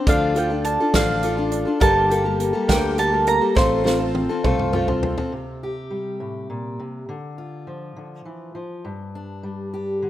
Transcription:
0.07 D2 D3 F3 D4 F4 A4 D5 F5, kick, closed hi-hat
0.35 F3 D4 F4 A4 G5, closed hi-hat
0.50 D4 F4 A4
0.65 D4 A5, closed hi-hat
0.80 D4 F4 A4
0.93 A1 D3 F3 D4 F4 A4 D5 F5, kick, snare, closed hi-hat
1.22 F3 D4 F4 A4, closed hi-hat
1.37 D4 F4 A4
1.51 D4, closed hi-hat
1.65 D4 F4 A4
1.80 G1 G2 D3 G3 A#3 G4 A4 A#4 A5, kick, closed hi-hat
2.10 G3 A#3 G4 A4, closed hi-hat
2.24 G3 A#3 G4 A4
2.40 A#3, closed hi-hat
2.53 G3 A#3 G4 A4
2.68 D2 G2 D3 G3 A#3 G4 A4 A#4 G5, kick, snare, closed hi-hat
2.97 G3 A#3 G4 A4 A5, closed hi-hat
3.12 G3 A#3 G4 A4
3.27 A#3 A#5, closed hi-hat
3.41 G3 A#3 G4 A4
3.55 A1 A3 C4 F4 A4 C5 C6, kick, snare
3.84 A3 C4 F4 A4, snare
3.99 C4 F4 A4
4.15 C4, high tom
4.29 C4 F4 A4
4.44 C2 A3 C4 F4 A4 C5, kick, mid tom
4.59 mid tom
4.73 A3 C4 F4 A4, mid tom
4.87 C4 F4 A4, floor tom
5.03 C4, floor tom
5.17 C4 F4 A4, floor tom
5.32 C3
5.63 G4
5.90 G3
6.20 A2
6.50 A#2
6.79 C3
7.09 D3
7.38 F4
7.67 F3
7.96 D3
8.25 E3
8.55 F3
8.85 G2
9.15 D4
9.43 G3
9.74 G4
10.02 D3

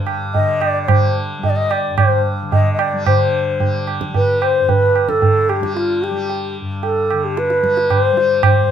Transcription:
Already playing: G2 D3 G3
0.07 tabla na
0.34 D3 D#5, tabla tin, tabla ge
0.61 D5, tabla na
0.84 D5
0.88 G3 C5, tabla na, tabla ge
1.38 G3
1.43 D#5, tabla tin, tabla ge
1.50 D5
1.56 D#5
1.71 D5, tabla na
1.90 G2
1.98 C5, tabla na, tabla ge
2.42 D3
2.52 D#5, tabla tin, tabla ge
2.74 D#5
2.79 D5, tabla na
2.93 G3
3.06 D3 C5, tabla na, tabla ge
3.58 G3, tabla tin, tabla ge
3.87 tabla na
4.01 tabla ke
4.09 G3
4.14 B4, tabla tin, tabla ge
4.42 C5, tabla na
4.60 G2
4.69 B4, tabla tin, tabla ge
4.96 tabla na
5.09 D3 A4, tabla ke
5.22 tabla tin, tabla ge
5.49 G4, tabla na
5.60 G3, tabla ke
5.77 F4, tabla te
6.02 G4, tabla te
6.11 G3
6.30 tabla tin
6.61 G2
6.83 A4, tabla tin
7.10 D3, tabla na
7.24 G4
7.37 B4, tabla te
7.50 tabla te
7.62 G3, tabla ke
7.77 tabla te
7.90 C5, tabla na, tabla ge
8.13 G3
8.17 tabla te
8.43 C5, tabla na, tabla ge
8.62 G2

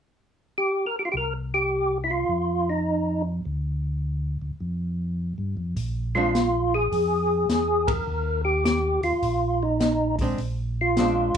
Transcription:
0.58 G4
0.87 A#4
0.99 G4
1.05 F4
1.12 C2 G4
1.17 A#4
1.54 G4
2.04 E4
2.10 F4
2.29 F2
2.70 D#4
3.45 D2
4.42 D2
4.60 F2
5.38 G2
5.57 F2
5.76 A#1, kick, open hi-hat
6.15 G#3 C4 D4 F4
6.35 snare, closed hi-hat
6.74 G#4
6.92 F2, kick, open hi-hat
7.49 E2, snare, closed hi-hat
7.87 A#4, kick, ride
8.07 D#2
8.45 G4
8.65 G4, snare, closed hi-hat
9.03 D#2 F4, open hi-hat
9.22 A#1, kick, open hi-hat
9.63 D#4
9.80 snare, closed hi-hat
10.19 G#3 C4 D4, kick, open hi-hat
10.38 A#1, kick, open hi-hat
10.81 F4
10.97 G#3 C4 D4, snare, closed hi-hat

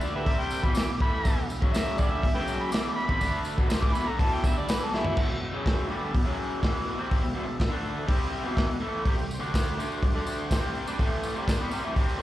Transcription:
Already playing: D3 A3 D4
0.01 B4 D5 E5 G5, tambourine
0.16 G4 B4 E5
0.25 C3 G3 C4 B4 E5 G5, kick, open hi-hat
0.40 G5
0.51 B4 E5 G5, tambourine
0.63 E2 B2 E3 B5, kick
0.75 B4 E5 G5 D6, snare, open hi-hat, tambourine
0.87 E2 B2
0.98 A2 E3 B4 E5 G5 B5, kick
1.02 A3
1.24 E2 B2 B4 E5 G5, kick, open hi-hat, tambourine
1.38 E2 B2
1.50 B4 E5 G5, tambourine
1.61 F#2 C#3 F#3, kick
1.73 E5, snare, open hi-hat, tambourine
1.77 B4 E5 G5
1.98 G2 D3 G3 B4 D5 E5 G5, kick, tambourine
2.11 E5
2.22 E2 B2, kick, open hi-hat
2.27 B4 E5 G5
2.35 F#2 C#3 F#3 B4 E5 G5
2.48 B4 E5 G5, tambourine
2.63 B5
2.70 E2 B2 E3 D6, snare, open hi-hat, tambourine
2.76 B4 E5 A5
2.96 B5
3.02 B4 E5 G5
3.08 C3 G3, kick
3.21 D3 A3 D4, kick, open hi-hat, tambourine
3.27 B4 E5 A5
3.45 B4 E5, tambourine
3.50 G5
3.57 E2 B2, kick
3.69 C3 G3 B4 E5 G5, snare, open hi-hat, tambourine
3.81 A2 E3 D6, kick
3.94 E2 B2 B4 E5 F#5 B5, tambourine
4.05 D3 A3 A#5
4.18 E2 B2 E3 B4 E5 A5, kick, open hi-hat
4.34 G5
4.44 G2 D3 G3 B4 E5 G5, kick, tambourine
4.58 D5
4.68 E2 B2 E3 B4 E5 G5, snare, open hi-hat, tambourine
4.84 A4
4.93 F#2 C#3 E4 B4 E5 G5, snare, tambourine
5.04 E2 B2, floor tom
5.15 E2 B2, kick, crash
5.20 B4 E5 G5
5.29 E2 B2
5.45 B4 E5 G5
5.52 F#2 C#3 F#3
5.66 B4 E5 G5, kick, snare, open hi-hat
5.88 G2 D3 G3
5.94 B4 E5 A5
6.13 E2 B2, kick, open hi-hat
6.18 B4 E5 F#5
6.24 F#2 C#3 F#3
6.40 B4 E5 G5
6.61 E2 B2 E3, kick, snare, open hi-hat
6.66 B4 E5 F#5
6.88 B4 E5 F#5
6.97 C3 G3 C4
7.10 B4 E5 G5, kick, open hi-hat
7.22 E2 B2
7.34 E2 B2 B4 E5 A5
7.46 E2 B2
7.59 B4 E5 G5, kick, snare, open hi-hat
7.70 D3 A3 D4
7.83 B4 E5 G5
8.07 C3 G3 C4 B4 E5 G5, kick, open hi-hat
8.32 B4 E5 G5
8.43 E2 B2 E3
8.56 B4 E5 F#5, kick, snare, open hi-hat
8.69 E2 B2
8.80 A2 E3 A3 B4 E5 G5
9.05 C3 G3 G4 C5 G5, kick, open hi-hat
9.16 C3 G3, tambourine
9.31 G4 C5 G5, tambourine
9.39 D3 A3 D4, tambourine
9.54 G4 C5 G5, kick, snare, open hi-hat, tambourine
9.67 tambourine
9.78 D3 A3 D4 G4 C5 G5, tambourine
9.92 tambourine
10.03 C3 G3 G4 C5 D5, kick, open hi-hat
10.14 D3 A3 D4
10.25 G4 C5 G5, tambourine
10.38 tambourine
10.48 C3 G4 C5 G5, kick, open hi-hat, tambourine
10.52 G3 C4, snare
10.63 tambourine
10.73 G4 C5 G5, tambourine
10.86 G3 D4, tambourine
10.97 A2 E3 A3 G4 C5 G5, kick, open hi-hat
11.22 G4 C5 G5, tambourine
11.35 C3 G3, tambourine
11.46 G3 D4 G4 C5 G5, kick, snare, open hi-hat, tambourine
11.59 E3 B3, tambourine
11.70 C3 G3 G4 C5 G5, tambourine
11.84 A2 E3
11.94 C3 G3 C4 G4 C5, kick, open hi-hat, tambourine
11.99 A5
12.09 tambourine
12.18 D3

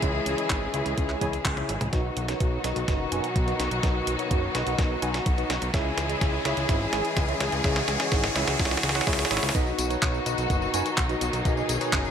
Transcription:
Already playing: C#3 E3 G#3 E4 G#4
0.02 C#2 E4 G#4 C#5 E5, kick, closed hi-hat
0.26 C#2, closed hi-hat
0.38 E4 G#4 C#5 D#5, closed hi-hat
0.50 G#1, kick, clap, closed hi-hat
0.74 C#2 E4 G#4 C#5 E5, closed hi-hat
0.86 C#2, closed hi-hat
0.98 C#2, kick, closed hi-hat
1.09 clap
1.21 C#2 E4 G#4 C#5 G#5, kick, closed hi-hat, high tom
1.33 closed hi-hat
1.45 C#2, kick, clap, closed hi-hat, mid tom
1.57 E4 G#4 C#5 E5, closed hi-hat, mid tom
1.69 G#1, closed hi-hat
1.81 C#2, closed hi-hat, mid tom
1.93 B1 B2 D#3 F#3 D#4 F#4 B4 D#5, kick, snare, closed hi-hat, riser
2.17 B1, closed hi-hat
2.28 D#4 F#4 B4 C#5, snare, closed hi-hat
2.40 B1, kick, closed hi-hat
2.64 B1 D#4 F#4 B4 D#5, snare, closed hi-hat
2.76 B1, closed hi-hat
2.88 F#1, kick, snare, closed hi-hat
3.12 F#1 D#4 F#4 B4 G#5, closed hi-hat
3.24 closed hi-hat
3.36 B1, kick, closed hi-hat
3.48 D#4 F#4 B4 D#5, closed hi-hat
3.60 B1, snare, closed hi-hat
3.71 B1, closed hi-hat
3.83 B1 D#4 F#4 B4 D#5, kick, snare, closed hi-hat
4.07 B1, closed hi-hat
4.19 D#4 F#4 B4 C#5, closed hi-hat
4.31 F#1, kick, closed hi-hat
4.55 B1 D#4 F#4 B4 D#5, snare, closed hi-hat
4.67 B1, closed hi-hat
4.79 B1, kick, snare, closed hi-hat
5.02 B1 D#4 F#4 B4 G#5, closed hi-hat
5.14 snare, closed hi-hat
5.26 B1, kick, closed hi-hat
5.38 D#4 F#4 B4 D#5, closed hi-hat
5.50 B1, snare, closed hi-hat
5.62 B1, closed hi-hat
5.74 C#2 C#3 E3 G#3 E4 G#4 C#5 E5, kick, snare, closed hi-hat
5.98 C#2, snare, closed hi-hat
6.09 E4 G#4 C#5 D#5, closed hi-hat
6.21 C#2, kick, snare, closed hi-hat
6.45 C#2 E4 G#4 C#5 E5, snare, closed hi-hat
6.57 C#2, closed hi-hat
6.69 G#1, kick, snare, closed hi-hat
6.93 G#1 E4 G#4 C#5 G#5, snare, closed hi-hat
7.05 closed hi-hat
7.17 C#2, kick, snare, closed hi-hat
7.28 E4 G#4 C#5 E5, closed hi-hat
7.40 C#2, snare, closed hi-hat
7.52 C#2, closed hi-hat
7.64 C#2 E4 F#4 G#4 C#5 E5, kick, snare, closed hi-hat
7.76 snare, closed hi-hat
7.88 C#2, snare, closed hi-hat
8.00 E4 G#4 C#5 D#5, snare, closed hi-hat
8.12 G#1, kick, snare, closed hi-hat
8.24 snare
8.36 C#2 E4 G#4 C#5 E5, snare, closed hi-hat
8.48 C#2, snare, closed hi-hat
8.60 C#2, kick, snare, closed hi-hat
8.65 snare
8.71 snare
8.77 snare
8.83 C#2, snare, closed hi-hat
8.89 snare
8.95 E4 G#4 C#5 F#5, snare, closed hi-hat
9.01 snare
9.07 C#2 E4 G#4 C#5 E5, kick, snare, closed hi-hat
9.13 snare
9.19 snare, closed hi-hat
9.25 snare
9.31 G#1 E4 G#4 C#5 E5, snare, closed hi-hat
9.37 snare
9.43 C#2, snare, closed hi-hat
9.49 snare
9.55 B1 B2 D#3 F#3 D#4 F#4 B4 D#5, kick, closed hi-hat, tambourine
9.67 tambourine
9.79 B1, closed hi-hat, tambourine
9.90 D#4 F#4 B4 C#5, closed hi-hat, tambourine
10.02 B1, kick, clap, closed hi-hat, tambourine
10.14 tambourine
10.26 B1 D#4 F#4 B4 D#5, closed hi-hat, tambourine
10.38 B1, closed hi-hat, tambourine
10.50 F#1, kick, closed hi-hat, tambourine
10.62 tambourine
10.74 F#1 D#4 F#4 B4 G#5, closed hi-hat, tambourine
10.86 closed hi-hat, tambourine
10.98 B1, kick, clap, closed hi-hat, tambourine
11.09 D#4 F#4 B4 D#5, closed hi-hat, tambourine
11.21 B1, closed hi-hat, tambourine
11.33 B1, closed hi-hat, tambourine
11.45 B1 D#4 F#4 G#4 B4 D#5, kick, closed hi-hat, tambourine
11.57 tambourine
11.69 B1, closed hi-hat, tambourine
11.81 D#4 F#4 B4 C#5, closed hi-hat, tambourine
11.93 F#1, kick, clap, closed hi-hat, tambourine
12.05 tambourine

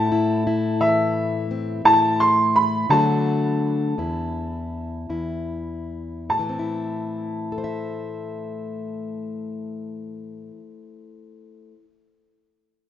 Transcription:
Already playing: A2 E4 A5
0.12 E4
0.47 E4
0.81 E3 E5
1.51 C4
1.85 A2 E4 A5
2.20 C6
2.56 B5
2.89 D3 F#3 A3 D4 F#4 A5
3.98 E2 E4
5.09 E2 E4
6.29 A2 A5
6.39 E3
6.49 C4
6.59 E4
7.52 A4
7.58 C5
7.64 E5

